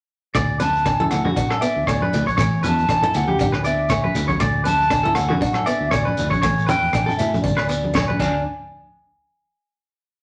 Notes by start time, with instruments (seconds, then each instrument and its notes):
0.35 fingered electric bass D2, steel-string acoustic guitar A3, clean electric guitar D5, kick, cross-stick, low agogo, shekere
0.60 steel-string acoustic guitar C#4, clean electric guitar B4, flute A5, closed hi-hat, high conga, shekere
0.76 shekere
0.86 steel-string acoustic guitar D4, kick, cross-stick, low agogo, shekere
1.00 steel-string acoustic guitar E4, clean electric guitar A4, high conga
1.09 steel-string acoustic guitar E4, flute F#5, cross-stick, closed hi-hat, low conga, low agogo, shekere
1.25 fingered electric bass D3, clean electric guitar F#4, high conga, low conga
1.33 fingered electric bass F#2, steel-string acoustic guitar D4, flute F#5, kick, shekere
1.50 clean electric guitar A4, cross-stick, low agogo
1.59 steel-string acoustic guitar B3, clean electric guitar D5, flute E5, closed hi-hat, shekere
1.76 fingered electric bass D2
1.87 fingered electric bass D2, steel-string acoustic guitar A3, clean electric guitar C#5, flute D5, kick, cross-stick, low agogo, shekere
2.02 clean electric guitar B4, high conga
2.13 fingered electric bass D2, steel-string acoustic guitar A3, closed hi-hat, low conga, shekere
2.26 fingered electric bass A#1, clean electric guitar C#5, kick, shekere
2.37 fingered electric bass A1, steel-string acoustic guitar A3, clean electric guitar C#5, kick, cross-stick, low agogo, shekere
2.63 fingered electric bass E2, steel-string acoustic guitar C#4, clean electric guitar B4, closed hi-hat, high conga, shekere
2.67 flute A5
2.78 shekere
2.88 fingered electric bass A1, steel-string acoustic guitar D4, kick, cross-stick, low agogo, shekere
3.03 steel-string acoustic guitar E4, clean electric guitar A4, high conga
3.14 fingered electric bass D2, steel-string acoustic guitar E4, flute F#5, closed hi-hat, low conga, low agogo, shekere
3.28 clean electric guitar G4, high conga
3.39 fingered electric bass G1, steel-string acoustic guitar D4, flute F#5, kick, shekere
3.52 fingered electric bass D2, clean electric guitar B4, cross-stick, low agogo
3.64 steel-string acoustic guitar B3, clean electric guitar D5, flute E5, closed hi-hat, shekere
3.89 steel-string acoustic guitar A3, clean electric guitar C#5, kick, cross-stick, low agogo, shekere
4.04 clean electric guitar B4, high conga
4.15 fingered electric bass D2, steel-string acoustic guitar A3, closed hi-hat, low conga, shekere
4.28 clean electric guitar C#5, kick, high conga, shekere
4.40 fingered electric bass D2, steel-string acoustic guitar A3, clean electric guitar D5, kick, cross-stick, low agogo, shekere
4.64 steel-string acoustic guitar C#4, clean electric guitar B4, flute A5, closed hi-hat, high conga, shekere
4.81 shekere
4.90 steel-string acoustic guitar D4, kick, cross-stick, low agogo, shekere
5.03 steel-string acoustic guitar E4, clean electric guitar A4, high conga
5.15 steel-string acoustic guitar E4, flute F#5, cross-stick, closed hi-hat, low conga, low agogo, shekere
5.29 fingered electric bass D3, clean electric guitar F#4, high conga, low conga
5.40 fingered electric bass F#2, steel-string acoustic guitar D4, flute F#5, kick, shekere
5.54 clean electric guitar A4, cross-stick, low agogo
5.66 steel-string acoustic guitar B3, clean electric guitar D5, flute E5, closed hi-hat, shekere
5.80 fingered electric bass D2
5.91 fingered electric bass D2, steel-string acoustic guitar A3, clean electric guitar C#5, flute D5, kick, cross-stick, low agogo, shekere
6.05 clean electric guitar B4, high conga
6.17 fingered electric bass D2, closed hi-hat, low conga, shekere
6.30 fingered electric bass A#1, clean electric guitar C#5, kick, high conga, shekere
6.42 fingered electric bass A1, steel-string acoustic guitar A3, clean electric guitar C#5, kick, cross-stick, low agogo, shekere
6.58 shekere
6.67 fingered electric bass E2, steel-string acoustic guitar C#4, clean electric guitar B4, flute G5, closed hi-hat, high conga, shekere
6.93 fingered electric bass A1, steel-string acoustic guitar D4, kick, cross-stick, low agogo, shekere
7.06 clean electric guitar A4, high conga, shekere
7.17 fingered electric bass A2, steel-string acoustic guitar E4, flute E5, closed hi-hat, low conga, low agogo, shekere
7.34 high conga, low conga, shekere
7.41 fingered electric bass G1, steel-string acoustic guitar D4, flute D5, kick
7.46 shekere
7.57 fingered electric bass D2, clean electric guitar B4, cross-stick, low agogo
7.61 shekere
7.69 steel-string acoustic guitar B3, muted clean electric guitar stroke, closed hi-hat, shekere
7.84 high conga
7.94 steel-string acoustic guitar A3, clean electric guitar C#5, kick, snare, high conga, low agogo, shekere
8.08 clean electric guitar B4, high conga
8.19 fingered electric bass D2, steel-string acoustic guitar D4, clean electric guitar D4, flute D5, kick, crash, high conga, low agogo, shekere